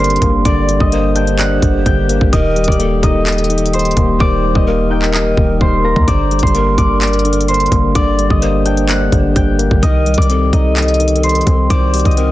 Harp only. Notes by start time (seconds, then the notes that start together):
Already playing: A#3 C4 A#4 D5 D6
0.00 C5 C6
0.45 D5 D6
0.80 D#5 D#6
1.16 G5 G6
1.39 F#5 F#6
1.86 G5 G6
2.33 D#5 D#6
2.68 D5 D6
3.03 D#5 D#6
3.27 D#5 D#6
3.74 C5 C6
4.21 D5 D6
4.56 D#5 D#6
4.91 G5 G6
5.14 D#5 D#6
5.61 C5 C6
5.84 A#4 A#5
6.08 D5 D6
6.43 C5 C6
6.78 D5 D6
7.01 D5 D6
7.48 C5 C6
7.95 D5 D6
8.30 D#5 D#6
8.65 G5 G6
8.89 F#5 F#6
9.36 G5 G6
9.83 D#5 D#6
10.18 D5 D6
10.53 D#5 D#6
10.77 D#5 D#6
11.24 C5 C6
11.70 D5 D6
12.05 D#5 D#6